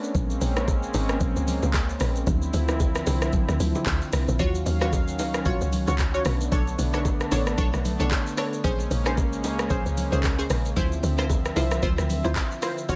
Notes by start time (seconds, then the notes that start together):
Already playing: A3 B3 C#4 D4
0.04 shaker
0.15 A#1 G#3 A#3 C4 C#4, kick, low conga, shaker
0.30 shaker
0.41 A#1, open hi-hat, low bongo, shaker
0.57 cross-stick, low bongo, shaker
0.68 kick, high bongo, shaker
0.83 shaker
0.94 G#1, open hi-hat, high bongo, low bongo, shaker
1.09 cross-stick, shaker
1.20 A#1, kick, low conga, shaker
1.36 C#2, shaker
1.47 open hi-hat, low conga, shaker
1.63 C#2, high bongo, low bongo, shaker
1.74 kick, clap, high bongo, shaker
1.89 shaker
2.00 A#1, cross-stick, open hi-hat, shaker
2.16 shaker
2.27 D2 D3 F3 C4 E4, kick, low conga, shaker
2.42 shaker
2.53 D2, open hi-hat, low bongo, shaker
2.69 cross-stick, low bongo, shaker
2.80 kick, high bongo, shaker
2.95 cross-stick, shaker
3.07 C2, open hi-hat, high bongo, low bongo, shaker
3.22 cross-stick, shaker
3.33 kick, low conga, shaker
3.49 D2, cross-stick, shaker
3.60 D2, open hi-hat, low conga, shaker
3.75 high bongo, low bongo, shaker
3.86 D2, kick, clap, high bongo, shaker
4.02 shaker
4.13 C2, cross-stick, open hi-hat, shaker
4.28 A#1, shaker
4.39 D#2 D#3 F#3 C#4 F4 F#4 C#5 F5, kick, low conga, shaker
4.55 shaker
4.66 D#2, open hi-hat, low bongo, shaker
4.81 F4 F#4 C#5, cross-stick, low bongo, shaker
4.93 kick, high bongo, shaker
5.08 shaker
5.19 C#2, open hi-hat, high bongo, low bongo, shaker
5.34 cross-stick, shaker
5.45 A#1 F4 F#4 C#5, kick, low conga, shaker
5.61 C#2, shaker
5.72 open hi-hat, low conga, shaker
5.87 C#2 F4 F#4 C#5, high bongo, low bongo, shaker
5.99 kick, clap, high bongo, shaker
6.14 F4 F#4 C#5, shaker
6.25 B1 D3 A3 B3 D4, cross-stick, open hi-hat, shaker
6.41 shaker
6.52 B1 D4 A4 C#5, kick, low conga, shaker
6.67 shaker
6.78 B1, open hi-hat, low bongo, shaker
6.93 D4 A4 C#5, cross-stick, low bongo, shaker
7.05 kick, high bongo, shaker
7.20 cross-stick, shaker
7.31 A1 D4 A4 C#5, open hi-hat, high bongo, low bongo, shaker
7.47 cross-stick, shaker
7.58 B1 D4 A4 C#5, kick, low conga, shaker
7.74 B1, cross-stick, shaker
7.85 open hi-hat, low conga, shaker
8.00 B1 D4 A4 C#5, high bongo, low bongo, shaker
8.11 kick, clap, high bongo, shaker
8.27 shaker
8.37 D4 A4 C#5, cross-stick, open hi-hat, shaker
8.53 shaker
8.64 A#1 C#3 G#3 A#3 C#4 G#4 C5, kick, low conga, shaker
8.80 shaker
8.91 A#1, open hi-hat, low bongo, shaker
9.06 C#4 G#4 C5, cross-stick, low bongo, shaker
9.17 kick, high bongo, shaker
9.33 shaker
9.44 C#2, open hi-hat, high bongo, low bongo, shaker
9.59 cross-stick, shaker
9.70 A#1 C#4 G#4 C5, kick, low conga, shaker
9.86 C#2, shaker
9.97 open hi-hat, low conga, shaker
10.12 C#2 C#4 G#4 C5, high bongo, low bongo, shaker
10.24 kick, clap, high bongo, shaker
10.38 C#4 G#4 C5, shaker
10.50 A#1, cross-stick, open hi-hat, shaker
10.65 shaker
10.76 D2 D3 F3 C4 E4 F4 C5 E5, kick, low conga, shaker
10.92 shaker
11.03 D2, open hi-hat, low bongo, shaker
11.18 E4 F4 C5, cross-stick, low bongo, shaker
11.29 kick, high bongo, shaker
11.45 cross-stick, shaker
11.56 C2 E4 F4 C5, open hi-hat, high bongo, low bongo, shaker
11.71 cross-stick, shaker
11.82 D2 E4 F4 C5, kick, low conga, shaker
11.98 D2, cross-stick, shaker
12.09 open hi-hat, low conga, shaker
12.24 D2 E4 F4 C5, high bongo, low bongo, shaker
12.36 kick, clap, high bongo, shaker
12.51 shaker
12.62 E4 F4 C5, cross-stick, open hi-hat, shaker
12.78 shaker
12.89 D#2 D#3 F#3 C#4 F4 F#4 C#5 F5, kick, low conga, shaker